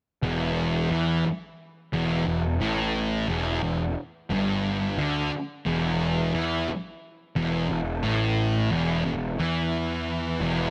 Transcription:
0.22 0.87 E1 medium
0.22 0.90 E2 loud
0.91 1.23 E2 medium
0.91 1.24 E3 medium
1.25 muted picked electric bass stroke soft
1.25 muted distorted electric guitar stroke medium
1.93 2.24 E1 medium
1.93 2.25 E2 loud
2.26 2.58 E1 medium
2.26 2.54 E2 medium
2.61 3.25 A1 medium
2.61 3.28 A2 loud
3.28 3.60 E1 medium
3.28 3.61 E2 loud
3.62 3.94 E1 medium
3.62 3.90 E2 medium
4.30 4.94 G1 medium
4.30 4.97 G2 loud
4.98 5.29 D2 medium
4.98 5.31 D3 loud
5.66 6.30 E1 medium
5.66 6.33 E2 loud
6.34 6.66 E2 medium
6.34 6.67 E3 medium
6.68 muted distorted electric guitar stroke medium
6.68 muted picked electric bass stroke soft
7.36 7.68 E1 medium
7.36 7.68 E2 loud
7.70 8.01 E1 medium
7.70 7.97 E2 medium
8.03 8.68 A1 loud
8.03 8.70 A2 loud
8.71 9.03 E1 medium
8.71 9.04 E2 medium
9.05 9.37 E1 medium
9.05 9.33 E2 medium
9.39 10.37 E2 medium
9.39 10.40 E3 loud
10.40 10.70 E1 medium
10.40 10.70 E2 medium

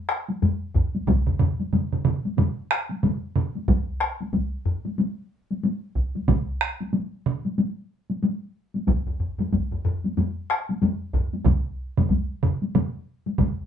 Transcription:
0.09 taiko rim medium
0.29 taiko high soft
0.42 taiko low-mid medium
0.42 taiko high medium
0.74 taiko medium
0.74 taiko low-mid medium
0.95 taiko high soft
1.07 taiko medium
1.07 taiko low-mid medium
1.07 taiko mid medium
1.07 taiko high medium
1.27 taiko low-mid medium
1.27 taiko mid medium
1.39 taiko low-mid medium
1.39 taiko mid medium
1.60 taiko high soft
1.73 taiko low-mid medium
1.73 taiko mid medium
1.73 taiko high medium
1.93 taiko low-mid medium
1.93 taiko mid medium
2.05 taiko low-mid medium
2.05 taiko mid medium
2.25 taiko high soft
2.38 taiko low-mid medium
2.38 taiko mid medium
2.38 taiko high medium
2.71 taiko rim medium
2.90 taiko high soft
3.03 taiko low-mid medium
3.03 taiko mid medium
3.03 taiko high medium
3.36 taiko low-mid medium
3.36 taiko mid medium
3.55 taiko high soft
3.68 taiko medium
3.68 taiko low-mid medium
3.68 taiko high medium
4.01 taiko rim medium
4.21 taiko high soft
4.33 taiko medium
4.33 taiko high medium
4.65 taiko low-mid medium
4.85 taiko high soft
4.98 taiko high medium
5.51 taiko high soft
5.63 taiko high medium
5.96 taiko medium
6.15 taiko high soft
6.28 taiko medium
6.28 taiko mid medium
6.28 taiko high medium
6.61 taiko rim medium
6.80 taiko high soft
6.93 taiko high medium
7.26 taiko mid medium
7.45 taiko high soft
7.58 taiko high medium
8.10 taiko high soft
8.23 taiko high medium
8.74 taiko high soft
8.87 taiko medium
8.87 taiko low-mid medium
8.87 taiko high medium
9.07 taiko low-mid medium
9.20 taiko low-mid medium
9.39 taiko low-mid medium
9.39 taiko high soft
9.52 taiko medium
9.52 taiko low-mid medium
9.52 taiko high medium
9.72 taiko low-mid medium
9.85 taiko low-mid medium
10.04 taiko high soft
10.17 taiko low-mid medium
10.17 taiko high medium
10.50 taiko rim medium
10.69 taiko high soft
10.82 taiko low-mid medium
10.82 taiko high medium
11.13 taiko medium
11.13 taiko low-mid medium
11.33 taiko high soft
11.45 taiko medium
11.45 taiko low-mid medium
11.45 taiko mid medium
11.45 taiko high medium
11.97 taiko low-mid medium
11.97 taiko mid medium
11.97 taiko high soft
12.09 taiko medium
12.09 taiko high medium
12.43 taiko low-mid medium
12.43 taiko mid medium
12.62 taiko high soft
12.75 taiko low-mid medium
12.75 taiko mid medium
12.75 taiko high medium
13.26 taiko high soft
13.38 taiko medium
13.38 taiko low-mid medium
13.38 taiko mid medium
13.38 taiko high medium

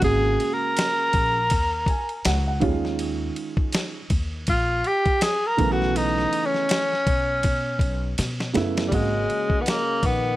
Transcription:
0.01 0.36 G#1 loud
0.01 1.36 C#3 medium
0.01 1.36 G#3 medium
0.01 1.37 A#3 medium
0.01 1.37 F#4 medium
0.01 0.55 G#4 loud
0.01 kick loud
0.01 ride medium
0.40 ride medium
0.53 2.38 A#4 loud
0.77 snare loud
0.77 hi-hat pedal medium
0.77 ride medium
1.13 1.47 A#1 medium
1.13 kick medium
1.13 ride medium
1.50 1.84 D#2 medium
1.50 kick medium
1.50 ride medium
1.86 2.23 G#5 medium
1.86 kick medium
1.86 ride medium
2.09 ride soft
2.25 2.58 C#2 loud
2.25 2.46 F#5 medium
2.25 snare loud
2.25 hi-hat pedal medium
2.25 ride medium
2.48 2.62 F#5 medium
2.60 3.28 D#2 loud
2.60 3.95 D#3 loud
2.60 2.69 G3 medium
2.60 3.96 C#4 medium
2.60 3.97 F4 loud
2.60 2.96 F5 medium
2.60 kick loud
2.60 ride medium
2.68 3.99 G#3 medium
2.85 snare soft
2.99 ride medium
3.36 ride medium
3.57 kick loud
3.72 snare loud
3.72 hi-hat pedal medium
3.72 ride medium
4.10 4.44 D#2 medium
4.10 kick medium
4.10 ride medium
4.47 4.81 A#1 medium
4.47 4.88 F4 loud
4.47 kick medium
4.47 ride medium
4.84 5.24 G4 loud
4.84 ride medium
5.06 kick medium
5.06 ride soft
5.21 5.48 G#4 loud
5.21 snare loud
5.21 hi-hat pedal medium
5.21 ride medium
5.47 5.73 A#4 loud
5.57 6.25 B1 loud
5.57 6.92 C#3 medium
5.57 6.93 E3 medium
5.57 6.92 A3 medium
5.57 6.93 B3 medium
5.57 kick loud
5.57 ride medium
5.72 5.98 F#4 loud
5.82 snare soft
5.96 6.47 D#4 loud
5.96 ride medium
6.18 snare soft
6.33 ride medium
6.46 8.31 C#4 loud
6.54 snare soft
6.69 snare loud
6.69 hi-hat pedal medium
6.69 ride medium
6.93 snare soft
7.07 7.40 B1 medium
7.07 kick loud
7.07 ride medium
7.43 7.77 B2 loud
7.43 kick medium
7.43 ride medium
7.79 8.13 B1 medium
7.79 kick medium
7.79 ride medium
8.18 8.51 B2 loud
8.18 snare medium
8.18 hi-hat pedal medium
8.18 ride medium
8.40 snare medium
8.53 8.89 F#2 loud
8.53 8.88 C#3 loud
8.53 8.88 A3 medium
8.53 8.89 B3 medium
8.53 8.89 E4 loud
8.53 snare medium
8.53 ride medium
8.77 snare medium
8.77 ride soft
8.86 8.95 A2 medium
8.86 8.96 G3 medium
8.91 9.25 G#1 loud
8.91 10.25 C#3 medium
8.91 9.61 C#3 medium
8.91 10.25 G#3 medium
8.91 10.26 A#3 medium
8.91 10.26 F#4 medium
8.91 kick loud
8.91 ride medium
8.95 9.63 G#3 loud
9.30 ride medium
9.50 kick medium
9.60 9.70 D#3 medium
9.60 9.70 B3 medium
9.66 10.05 C#3 medium
9.66 10.07 A#3 loud
9.66 snare loud
9.66 hi-hat pedal medium
9.66 ride medium
10.03 10.36 A#1 medium
10.03 10.36 D#3 medium
10.03 10.36 B3 loud
10.03 kick medium
10.03 ride medium

